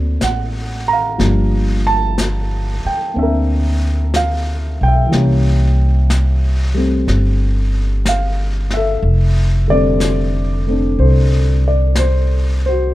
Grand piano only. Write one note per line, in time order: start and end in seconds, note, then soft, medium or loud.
0.00 1.17 F#3 soft
0.00 1.18 A3 soft
0.00 1.17 A#3 soft
0.00 1.20 C4 soft
0.00 0.16 D5 medium
0.23 0.91 F#5 medium
0.88 1.89 A#5 medium
0.93 2.83 F5 medium
1.18 5.12 F3 soft
1.18 5.09 G3 soft
1.18 3.13 A#3 soft
1.18 3.15 D4 soft
1.87 2.88 A5 medium
2.87 3.14 G5 medium
3.14 5.11 A#3 soft
3.14 5.12 C4 soft
3.14 5.12 D4 soft
3.19 4.12 E5 medium
3.23 5.12 A#4 soft
4.16 4.78 F5 medium
4.83 8.02 G5 medium
4.88 8.05 E5 medium
5.06 9.00 E3 soft
5.11 6.73 G3 soft
5.11 9.03 A#3 soft
5.17 9.05 C#4 soft
6.74 9.02 G3 soft
6.74 9.03 A3 soft
6.74 9.04 C4 soft
8.09 8.76 F5 medium
8.74 9.73 A4 soft
8.74 9.73 E5 medium
9.68 12.93 D3 soft
9.68 12.94 G3 soft
9.68 10.65 A3 soft
9.68 10.95 D5 medium
9.72 10.67 C4 soft
9.72 11.01 A4 soft
10.67 12.94 A3 soft
10.67 12.94 C4 soft
10.67 12.94 D4 soft
10.99 12.92 A4 soft
10.99 11.62 C5 medium
11.68 11.98 D5 medium
11.99 12.64 C5 medium
12.66 12.94 F#4 soft
12.66 12.94 C5 medium